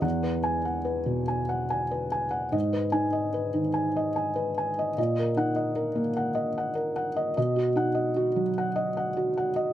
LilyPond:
<<
  \new Staff \with { instrumentName = "Felt piano" } { \time 3/4 \key b \major \tempo 4 = 74 << { r8 gis''8 r2 | r8 gis''8 r2 | r8 fis''8 r2 | r8 fis''8 r2 | } \\ { fis''16 b'8 fis''16 b'16 b,16 gis''16 fis''16 gis''16 b'16 gis''16 fis''16 | dis''16 b'8 dis''16 b'16 dis16 gis''16 dis''16 gis''16 b'16 gis''16 dis''16 | dis''16 ais'8 dis''16 ais'16 ais16 fis''16 dis''16 fis''16 ais'16 fis''16 dis''16 | dis''16 fis'8 dis''16 fis'16 fis16 fis''16 dis''16 fis''16 fis'16 fis''16 dis''16 | } >> }
  \new Staff \with { instrumentName = "Felt piano" } { \clef bass \time 3/4 \key b \major e,2. | gis,8 dis'4 r4. | ais,8 dis'4 r4. | b,8 dis'4 r4. | }
>>